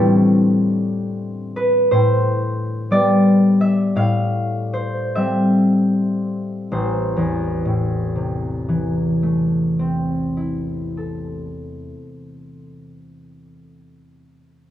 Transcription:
harp
Already playing: A2 G3 A3 C4 E4 G4 A4 E5
1.56 B4
1.91 A2 C5
2.91 G3 B3 D5
3.61 E5
3.96 A2 F5
4.73 C5
5.16 G3 C4 E5
6.72 A1 C5
7.17 E2
7.65 A2
8.16 C3
8.69 E3
9.23 A3
9.79 C4
10.37 E4
10.97 A4

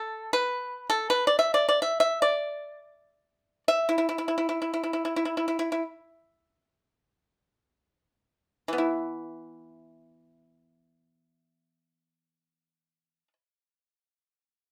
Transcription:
pipa
Already playing: A4
0.33 B4
0.90 A4
1.10 B4
1.27 D5
1.39 E5
1.54 D5
1.69 D5
1.82 E5
2.00 E5
2.22 D5
3.68 E5
3.89 E4
3.98 E4
4.09 E4
4.18 E4
4.28 E4
4.38 E4
4.49 E4
4.62 E4
4.74 E4
4.83 E4
4.93 E4
5.05 E4
5.16 E4
5.25 E4
5.37 E4
5.48 E4
5.59 E4
5.72 E4
8.68 E3
8.73 B3
8.78 E4

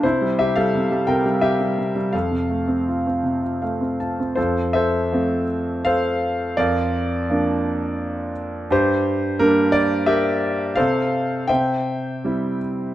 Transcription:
grand piano
0.03 C3 E4 C5
0.22 G3
0.39 C3 G4 E5
0.56 G3 A4 F5
0.75 C3
0.91 G3
1.07 C3 A#4 G5
1.26 G3
1.41 C3 G4 E5
1.60 G3
1.78 C3
1.96 G3
2.13 F2 A4 F5
2.31 C3
2.50 A3
2.68 C4
2.88 F4
3.07 C4
3.23 C3
3.43 F4
3.62 A3 F5
3.81 C4
4.00 F4 A5
4.20 C4
4.35 F2 F4 A4 C5
4.73 A4 C5 E5
5.12 F3 A3 C4
5.85 A4 C5 F5
6.57 F2 F4 A#4 D5
7.30 F3 A#3 D4
8.71 G2 G4 C5
9.39 G3 A#3 D4 A#4
9.72 D5
10.06 G4 A#4 E5
10.76 C3 A4 C5 F5
11.48 C3 C5 E5 G5
12.24 G3 C4 E4

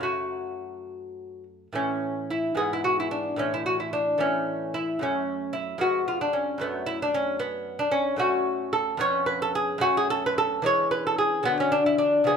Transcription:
lute
Already playing: F#2 F#3
0.01 A3 F#4
1.73 A2 E3 A3 C#4
2.31 E4
2.55 G#2 E3 B3 G#4
2.73 E4
2.84 F#4
3.00 E4
3.11 D4
3.36 A2 E3 A3 C#4
3.54 E4
3.66 F#4
3.80 E4
3.93 D4
4.18 A2 E3 A3 C#4
4.74 E4
4.99 F#2 F#3 A3 C#4
5.53 E4
5.78 F2 G#3 B3 F#4
6.08 F4
6.21 D4
6.33 C#4
6.58 F#2 F#3 A3 B3
6.86 E4
7.02 D4
7.14 C#4
7.40 B3
7.79 D4
7.92 C#4
8.16 F#2 A3 C#4 F#4
8.73 A4
8.97 F2 B3 C#4 C#5
9.26 B4
9.42 A4
9.55 G#4
9.78 F#2 A3 C#4 F#4
9.97 G#4
10.10 A4
10.26 B4
10.38 A4
10.62 E3 G#3 C#4 C#5
10.91 B4
11.07 A4
11.18 G#4
11.43 D3 F#3 B3
11.60 C#4
11.72 D4
11.86 E4
11.98 D4
12.24 C#3 F3 B3 G#4

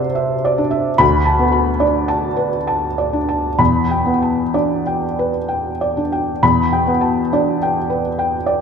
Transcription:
felt piano
Already playing: C3 C4 D4 C5 D5 E5 F#5 C6
0.15 E5
0.45 D5
0.58 D4
0.71 E5
0.98 D2 B5
1.25 A5
1.39 B3
1.52 B5
1.80 D4 D5
2.08 A5
2.36 B4
2.67 A5
2.98 D5
3.13 D4
3.29 A5
3.59 E2 B5
3.91 G5
4.06 B3
4.22 A5
4.54 D4 D5
4.87 G5
5.19 B4
5.48 G5
5.81 D5
5.97 D4
6.12 G5
6.43 E2 B5
6.72 G5
6.87 B3
7.01 A5
7.33 D4 D5
7.62 G5
7.90 B4
8.19 G5
8.46 D5

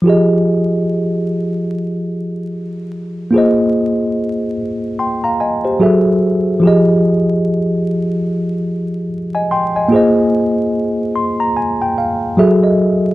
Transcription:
tine electric piano
0.02 F3 F4 G4
0.07 G#4 D#5
3.31 A#3 F4 G#4
3.36 C5 D#5
4.99 G5 C6
5.24 F5 A#5
5.40 D#5 G#5
5.65 G4 C5
5.79 F#3 F#4 G#4 A4 E5
6.60 F3 F4 G4
6.65 G#4 D#5
9.35 D#5 G#5
9.51 G5 C6
9.76 D#5 G#5
9.88 A#3 F4 G#4
9.94 C5 D#5
11.16 C6
11.40 A#5
11.57 G#5
11.82 G5
11.98 F5
12.37 F#3 F#4 G#4 A4 E5
12.64 D#5

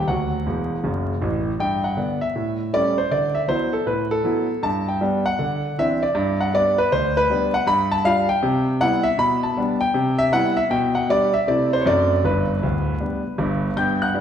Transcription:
grand piano
0.07 D2 F#3 F#4 F#5
0.46 E1 E2
0.84 F#1 F#2
1.22 A1 A2
1.60 G2 G5
1.84 F#5
1.97 D3 B3 D4
2.21 E5
2.35 A2
2.73 G3 A3 C#4 D5
2.98 C5
3.11 D3 D5
3.35 E5
3.48 F#3 B3 E4 C5
3.73 A4
3.86 A2 B4
4.11 A4
4.24 F#3 B3 E4
4.63 G2 A5
4.88 G5
5.01 G3 B3 D4
5.26 F#5
5.39 D3
5.78 E3 C4 D4 E5
6.03 D5
6.15 G2
6.41 F#5
6.54 G3 B3 D4 D5
6.78 B4
6.92 D2 C5
7.17 B4
7.30 G3 B3 D4
7.54 F#5
7.67 G2 B5
7.92 A5
8.05 G3 D4 F4 F5
8.29 G5
8.43 C3
8.80 G3 B3 E4 F#5
9.03 E5
9.18 B2 B5
9.43 A5
9.57 G3 B3 D4
9.81 G5
9.94 C3
10.19 E5
10.32 G3 B3 E4 F#5
10.57 E5
10.70 B2 G5
10.95 F#5
11.09 G3 D4 G4 D5
11.34 E5
11.47 C3 A3 C4 E4 D5
11.73 C5
11.81 C#5
11.86 F#2 A3 C4 D4 D5
12.24 G1 G2 B4
12.62 D1 D2
13.00 G3 B3 D4
13.38 G1 G2
13.77 G2 B3 G5 G6
14.02 F#5 F#6
14.14 G3 B3 D4

